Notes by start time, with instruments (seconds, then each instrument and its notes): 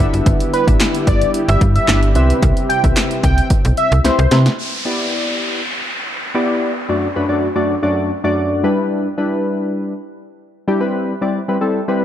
Already playing: analog synth pad D3
0.00 analog synth pad G3 B3 E4 G4, synth keys D4 E4 G4 B4 E5
0.13 fm bass F#1, closed hi-hat
0.26 fm bass G1, kick, closed hi-hat
0.40 closed hi-hat
0.53 analog synth lead B4, closed hi-hat
0.67 fm bass A1, synth keys D4 E4 G4 B4 E5, kick, closed hi-hat
0.80 snare, clap, closed hi-hat
0.95 closed hi-hat
1.07 fm bass G1, analog synth lead D5, kick, closed hi-hat
1.22 closed hi-hat
1.34 closed hi-hat
1.49 fm bass G1, analog synth lead E5, closed hi-hat
1.61 fm bass G2, kick, closed hi-hat
1.76 analog synth lead E5, closed hi-hat
1.88 fm bass G1, synth keys D4 E4 G4 B4 E5, snare, clap, closed hi-hat
2.03 closed hi-hat
2.15 fm bass C2, analog synth pad C3 C4, synth keys C4 E4 G4 B4 E5, closed hi-hat
2.30 closed hi-hat
2.42 fm bass C2, kick, closed hi-hat
2.57 closed hi-hat
2.69 analog synth lead G5, closed hi-hat
2.84 fm bass B1, synth keys C4 E4 G4 B4 E5, kick, closed hi-hat
2.97 snare, clap, closed hi-hat
3.11 closed hi-hat
3.23 fm bass C2, analog synth lead G5, kick, closed hi-hat
3.38 closed hi-hat
3.50 kick, closed hi-hat
3.65 fm bass B1, closed hi-hat
3.77 analog synth lead E5, closed hi-hat
3.92 fm bass C2, closed hi-hat
4.04 synth keys C4 E4 G4 B4 E5, analog synth lead C5, snare, closed hi-hat
4.19 fm bass C2, closed hi-hat
4.31 fm bass C3, synth keys C4 E4 G4 B4 E5, snare, closed hi-hat
4.46 snare, closed hi-hat
4.58 downlifter
4.85 synth keys B3 E4 G4 D5
6.34 synth keys B3 E4 G4 D5
6.89 synth keys F#2 A3 D4 F#4 D5
7.16 synth keys F#2 A3 D4 F#4 B4
7.28 synth keys F#2 A3 D4 F#4 D5
7.55 synth keys F#2 A3 D4 F#4 D5
7.83 synth keys F#2 A3 D4 F#4 D5
8.24 synth keys F#2 A3 D4 F#4 D5
8.63 synth keys G3 D4 E4 B4
9.18 synth keys G3 D4 E4 B4
10.68 synth keys G3 D4 E4 G4
10.80 synth keys G3 C4 E4 B4
11.21 synth keys G3 C4 E4 D5
11.48 synth keys G3 C4 E4 B4
11.61 synth keys G3 C4 E4 A4
11.88 synth keys G3 C4 E4 B4